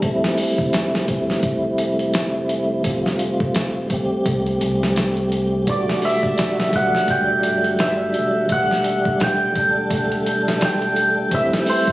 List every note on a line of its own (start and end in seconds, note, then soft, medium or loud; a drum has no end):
0.00 1.03 G3 medium
0.00 1.04 A3 medium
0.00 1.05 C4 medium
0.00 kick loud
0.00 closed hi-hat medium
0.06 1.07 E4 medium
0.24 snare medium
0.37 open hi-hat medium
0.58 4.07 F1 medium
0.58 kick medium
0.73 snare loud
0.73 closed hi-hat medium
0.95 snare medium
1.05 2.80 G3 medium
1.05 2.81 A3 medium
1.05 kick medium
1.05 closed hi-hat medium
1.10 2.82 C4 medium
1.10 2.83 E4 medium
1.30 snare soft
1.43 kick loud
1.43 closed hi-hat medium
1.78 closed hi-hat medium
1.99 closed hi-hat soft
2.14 snare loud
2.14 closed hi-hat medium
2.49 closed hi-hat medium
2.81 3.85 G3 medium
2.81 3.86 A3 medium
2.81 kick medium
2.81 closed hi-hat medium
2.85 3.87 C4 medium
2.85 3.89 F4 medium
3.06 snare soft
3.19 closed hi-hat medium
3.40 kick medium
3.55 snare loud
3.55 closed hi-hat medium
3.87 5.62 G3 medium
3.87 5.63 A3 medium
3.87 kick medium
3.87 closed hi-hat medium
3.92 5.64 C4 medium
3.92 5.65 G4 medium
4.26 4.57 C2 medium
4.26 kick loud
4.26 closed hi-hat medium
4.46 closed hi-hat soft
4.61 5.64 C2 medium
4.61 closed hi-hat medium
4.83 snare soft
4.96 snare loud
4.96 closed hi-hat medium
5.17 closed hi-hat soft
5.32 closed hi-hat medium
5.64 7.46 E1 medium
5.64 6.68 G3 medium
5.64 6.69 A3 medium
5.64 kick loud
5.64 closed hi-hat medium
5.68 6.70 D4 medium
5.68 6.71 F#4 medium
5.68 8.16 D5 medium
5.89 snare medium
6.02 7.81 E5 loud
6.02 open hi-hat medium
6.23 kick medium
6.38 snare loud
6.38 closed hi-hat medium
6.60 snare medium
6.69 8.44 G3 medium
6.69 8.45 A3 medium
6.69 kick medium
6.69 closed hi-hat medium
6.74 8.47 F#3 medium
6.74 8.46 D4 medium
6.74 7.16 F#5 loud
6.95 snare soft
7.08 8.58 G5 loud
7.08 kick loud
7.08 closed hi-hat medium
7.43 8.16 G1 loud
7.43 closed hi-hat medium
7.64 closed hi-hat soft
7.79 10.11 E5 medium
7.79 snare loud
7.79 closed hi-hat medium
8.14 9.17 E1 medium
8.14 closed hi-hat medium
8.46 9.50 G3 medium
8.46 9.51 A3 medium
8.46 kick medium
8.46 closed hi-hat medium
8.50 9.52 D4 medium
8.50 9.53 G4 medium
8.50 9.29 F#5 loud
8.71 snare soft
8.84 closed hi-hat medium
9.05 kick medium
9.20 11.13 E1 medium
9.20 10.64 G5 loud
9.20 snare loud
9.20 closed hi-hat medium
9.52 11.27 G3 medium
9.52 11.28 A3 medium
9.52 kick medium
9.52 closed hi-hat medium
9.57 11.29 D4 medium
9.57 11.30 A4 medium
9.90 kick loud
9.90 closed hi-hat medium
10.12 closed hi-hat soft
10.26 closed hi-hat medium
10.48 snare soft
10.61 11.92 G5 loud
10.61 snare loud
10.61 closed hi-hat medium
10.82 closed hi-hat soft
10.96 closed hi-hat medium
11.28 11.92 G3 medium
11.28 11.92 A3 medium
11.28 kick loud
11.28 closed hi-hat medium
11.33 11.92 C4 medium
11.33 11.92 E4 loud
11.33 11.92 E5 medium
11.53 snare medium
11.66 11.92 C5 medium
11.66 open hi-hat medium
11.87 11.92 F1 medium
11.87 kick medium